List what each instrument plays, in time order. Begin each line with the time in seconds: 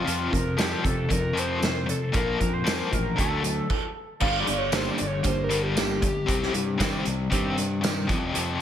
Already playing: analog synth lead F4
0.05 overdriven electric guitar F2 C3 F3, fingered electric bass F2, closed hi-hat
0.32 overdriven electric guitar F2 C3, fingered electric bass F2, analog synth lead A#4, kick, closed hi-hat
0.57 overdriven electric guitar F2 C3 F3, analog synth lead G4, snare, closed hi-hat, tambourine
0.84 overdriven electric guitar F2 C3, fingered electric bass F2, analog synth lead A4, kick, closed hi-hat
1.09 overdriven electric guitar F2 C3, fingered electric bass F2, analog synth lead A#4, kick, closed hi-hat
1.33 overdriven electric guitar F2 C3 F3, closed hi-hat
1.39 analog synth lead C5
1.60 overdriven electric guitar F2 C3, snare, closed hi-hat, tambourine
1.86 overdriven electric guitar F2 C3, analog synth lead A4, closed hi-hat
2.12 fingered electric bass A#1, overdriven electric guitar A#2 F3 A#3, kick, closed hi-hat
2.16 analog synth lead A#4
2.39 fingered electric bass F2, overdriven electric guitar A#2 F3, kick, closed hi-hat
2.53 analog synth lead C5
2.64 overdriven electric guitar A#2 F3 A#3, snare, closed hi-hat, tambourine
2.91 fingered electric bass A1, overdriven electric guitar A#2 F3, analog synth lead A#4, kick, closed hi-hat
3.16 fingered electric bass D2, overdriven electric guitar D3 F#3 A3, analog synth lead A4, kick, closed hi-hat
3.43 overdriven electric guitar D3 F#3, closed hi-hat
3.70 kick, crash
4.20 fingered electric bass G1, overdriven electric guitar G2 D3 G3, analog synth lead F5, muted clean electric guitar stroke, kick, crash
4.40 analog synth lead D5
4.46 fingered electric bass G1, overdriven electric guitar G2 D3, muted clean electric guitar stroke, closed hi-hat
4.58 analog synth lead C#5
4.72 overdriven electric guitar G2 D3 G3, clean electric guitar G3 A#3 D4 G4, analog synth lead C5, snare, closed hi-hat, tambourine
4.91 analog synth lead D5
4.98 fingered electric bass G1, overdriven electric guitar G2 D3, muted clean electric guitar stroke, closed hi-hat
5.07 analog synth lead C#5
5.23 fingered electric bass G1, overdriven electric guitar G2 D3, clean electric guitar G3 A#3 D4 G4, analog synth lead C5, kick, closed hi-hat
5.44 analog synth lead A#4
5.49 overdriven electric guitar G2 D3 G3, muted clean electric guitar stroke, closed hi-hat
5.63 analog synth lead G4
5.76 overdriven electric guitar G2 D3, clean electric guitar G3 A#3 D4 G4, snare, closed hi-hat, tambourine
6.02 overdriven electric guitar G2 D3, muted clean electric guitar stroke, kick, closed hi-hat
6.26 fingered electric bass C2, overdriven electric guitar C3 G3 C4, muted clean electric guitar stroke, kick, closed hi-hat
6.43 snare
6.53 fingered electric bass G2, overdriven electric guitar C3 G3, muted clean electric guitar stroke, closed hi-hat
6.78 overdriven electric guitar C3 G3 C4, clean electric guitar D#3 G3 C4 G4, kick, snare, closed hi-hat, tambourine
7.04 fingered electric bass C2, overdriven electric guitar C3 G3, muted clean electric guitar stroke, closed hi-hat
7.30 fingered electric bass G2, overdriven electric guitar C3 G3 C4, clean electric guitar D#3 G3 C4 G4, kick, closed hi-hat
7.56 overdriven electric guitar C3 G3, muted clean electric guitar stroke, closed hi-hat
7.81 overdriven electric guitar C3 G3, clean electric guitar D#3 G3 C4 G4, snare, closed hi-hat, tambourine
8.07 overdriven electric guitar F2 C3 F3, fingered electric bass F2, muted clean electric guitar stroke, kick, closed hi-hat
8.33 overdriven electric guitar F2 C3 F3, fingered electric bass F2, muted clean electric guitar stroke, closed hi-hat